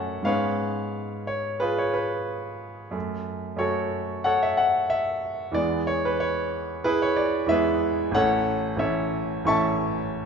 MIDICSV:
0, 0, Header, 1, 2, 480
1, 0, Start_track
1, 0, Key_signature, 3, "minor"
1, 0, Tempo, 670391
1, 193, Time_signature, 4, 2, 24, 8
1, 2112, Tempo, 652174
1, 7489, End_track
2, 0, Start_track
2, 0, Title_t, "Grand piano"
2, 0, Program_c, 0, 0
2, 0, Control_c, 0, 64, 127
2, 0, Note_on_c, 0, 42, 44
2, 0, Note_on_c, 0, 57, 36
2, 0, Note_on_c, 0, 61, 37
2, 0, Note_on_c, 0, 69, 53
2, 0, Note_on_c, 0, 73, 52
2, 0, Note_on_c, 0, 74, 58
2, 0, Note_on_c, 0, 76, 67
2, 0, Note_on_c, 0, 78, 70
2, 156, Note_off_c, 0, 42, 0
2, 157, Note_off_c, 0, 69, 0
2, 157, Note_off_c, 0, 73, 0
2, 161, Note_on_c, 0, 44, 45
2, 162, Note_off_c, 0, 57, 0
2, 165, Note_off_c, 0, 61, 0
2, 170, Note_on_c, 0, 56, 37
2, 178, Note_on_c, 0, 59, 38
2, 178, Note_on_c, 0, 77, 71
2, 180, Note_off_c, 0, 78, 0
2, 185, Note_on_c, 0, 71, 57
2, 186, Note_on_c, 0, 73, 55
2, 187, Note_on_c, 0, 61, 38
2, 206, Control_c, 0, 64, 0
2, 208, Note_off_c, 0, 76, 0
2, 212, Note_off_c, 0, 74, 0
2, 323, Control_c, 0, 64, 127
2, 888, Note_off_c, 0, 71, 0
2, 888, Note_off_c, 0, 73, 0
2, 912, Note_on_c, 0, 73, 62
2, 913, Note_off_c, 0, 77, 0
2, 1144, Note_on_c, 0, 71, 71
2, 1152, Note_on_c, 0, 68, 49
2, 1154, Note_off_c, 0, 73, 0
2, 1157, Note_on_c, 0, 65, 51
2, 1265, Note_off_c, 0, 68, 0
2, 1268, Note_off_c, 0, 65, 0
2, 1270, Note_off_c, 0, 71, 0
2, 1278, Note_on_c, 0, 73, 59
2, 1388, Note_on_c, 0, 71, 57
2, 1395, Note_off_c, 0, 73, 0
2, 1628, Note_off_c, 0, 71, 0
2, 2066, Note_off_c, 0, 44, 0
2, 2071, Note_off_c, 0, 56, 0
2, 2075, Note_off_c, 0, 59, 0
2, 2079, Note_off_c, 0, 61, 0
2, 2084, Note_on_c, 0, 42, 45
2, 2093, Note_on_c, 0, 57, 38
2, 2123, Control_c, 0, 64, 0
2, 2241, Control_c, 0, 64, 127
2, 2553, Note_off_c, 0, 42, 0
2, 2559, Note_off_c, 0, 57, 0
2, 2564, Note_on_c, 0, 42, 44
2, 2570, Note_on_c, 0, 57, 37
2, 2580, Note_on_c, 0, 73, 64
2, 2588, Note_on_c, 0, 66, 47
2, 2588, Note_on_c, 0, 69, 50
2, 3041, Note_off_c, 0, 66, 0
2, 3042, Note_off_c, 0, 69, 0
2, 3063, Note_off_c, 0, 73, 0
2, 3064, Note_on_c, 0, 78, 77
2, 3073, Note_on_c, 0, 69, 59
2, 3074, Note_on_c, 0, 73, 55
2, 3185, Note_off_c, 0, 69, 0
2, 3186, Note_off_c, 0, 73, 0
2, 3189, Note_off_c, 0, 78, 0
2, 3198, Note_on_c, 0, 76, 66
2, 3307, Note_on_c, 0, 78, 74
2, 3316, Note_off_c, 0, 76, 0
2, 3546, Note_on_c, 0, 76, 75
2, 3550, Note_off_c, 0, 78, 0
2, 3988, Note_off_c, 0, 42, 0
2, 3991, Note_off_c, 0, 57, 0
2, 4001, Note_on_c, 0, 40, 47
2, 4012, Note_on_c, 0, 52, 40
2, 4016, Note_on_c, 0, 56, 41
2, 4022, Note_on_c, 0, 74, 74
2, 4028, Note_off_c, 0, 76, 0
2, 4028, Note_on_c, 0, 59, 40
2, 4046, Control_c, 0, 64, 0
2, 4178, Control_c, 0, 64, 127
2, 4261, Note_on_c, 0, 73, 70
2, 4263, Note_off_c, 0, 74, 0
2, 4384, Note_off_c, 0, 73, 0
2, 4395, Note_on_c, 0, 71, 69
2, 4505, Note_on_c, 0, 73, 70
2, 4511, Note_off_c, 0, 71, 0
2, 4978, Note_on_c, 0, 71, 80
2, 4984, Note_on_c, 0, 64, 63
2, 4984, Note_on_c, 0, 68, 58
2, 4990, Note_off_c, 0, 73, 0
2, 5004, Control_c, 0, 64, 0
2, 5098, Note_off_c, 0, 64, 0
2, 5099, Note_off_c, 0, 68, 0
2, 5104, Note_off_c, 0, 71, 0
2, 5109, Note_on_c, 0, 73, 70
2, 5110, Control_c, 0, 64, 127
2, 5214, Note_on_c, 0, 74, 72
2, 5229, Note_off_c, 0, 73, 0
2, 5421, Note_off_c, 0, 40, 0
2, 5427, Note_off_c, 0, 52, 0
2, 5429, Note_off_c, 0, 56, 0
2, 5434, Note_on_c, 0, 40, 50
2, 5435, Note_off_c, 0, 59, 0
2, 5443, Note_on_c, 0, 52, 43
2, 5450, Note_on_c, 0, 56, 44
2, 5453, Note_on_c, 0, 76, 81
2, 5459, Note_off_c, 0, 74, 0
2, 5462, Note_on_c, 0, 59, 44
2, 5462, Note_on_c, 0, 71, 59
2, 5463, Note_on_c, 0, 68, 61
2, 5911, Note_off_c, 0, 68, 0
2, 5911, Note_off_c, 0, 71, 0
2, 5912, Note_off_c, 0, 40, 0
2, 5913, Note_on_c, 0, 33, 55
2, 5916, Note_off_c, 0, 52, 0
2, 5920, Note_off_c, 0, 56, 0
2, 5926, Note_off_c, 0, 59, 0
2, 5927, Note_on_c, 0, 52, 44
2, 5933, Note_on_c, 0, 57, 44
2, 5936, Note_off_c, 0, 76, 0
2, 5936, Note_on_c, 0, 78, 89
2, 5940, Note_on_c, 0, 73, 65
2, 5942, Note_on_c, 0, 61, 44
2, 5945, Note_on_c, 0, 69, 66
2, 5956, Control_c, 0, 64, 0
2, 6083, Control_c, 0, 64, 127
2, 6381, Note_off_c, 0, 33, 0
2, 6387, Note_off_c, 0, 73, 0
2, 6389, Note_off_c, 0, 52, 0
2, 6389, Note_off_c, 0, 69, 0
2, 6392, Note_on_c, 0, 33, 51
2, 6394, Note_off_c, 0, 57, 0
2, 6399, Note_off_c, 0, 61, 0
2, 6400, Note_on_c, 0, 52, 42
2, 6405, Note_on_c, 0, 57, 45
2, 6410, Note_on_c, 0, 61, 43
2, 6412, Note_on_c, 0, 76, 62
2, 6415, Note_off_c, 0, 78, 0
2, 6415, Note_on_c, 0, 69, 50
2, 6416, Note_on_c, 0, 73, 52
2, 6882, Note_off_c, 0, 33, 0
2, 6885, Note_off_c, 0, 69, 0
2, 6885, Note_off_c, 0, 73, 0
2, 6890, Note_off_c, 0, 52, 0
2, 6893, Note_on_c, 0, 33, 54
2, 6894, Note_off_c, 0, 57, 0
2, 6896, Note_off_c, 0, 61, 0
2, 6901, Note_on_c, 0, 52, 44
2, 6906, Note_off_c, 0, 76, 0
2, 6909, Note_on_c, 0, 85, 89
2, 6910, Note_on_c, 0, 57, 47
2, 6916, Note_on_c, 0, 61, 44
2, 6917, Note_on_c, 0, 76, 70
2, 6917, Note_on_c, 0, 81, 69
2, 7483, Note_off_c, 0, 76, 0
2, 7483, Note_off_c, 0, 81, 0
2, 7489, Note_off_c, 0, 33, 0
2, 7489, Note_off_c, 0, 52, 0
2, 7489, Note_off_c, 0, 57, 0
2, 7489, Note_off_c, 0, 61, 0
2, 7489, Note_off_c, 0, 85, 0
2, 7489, End_track
0, 0, End_of_file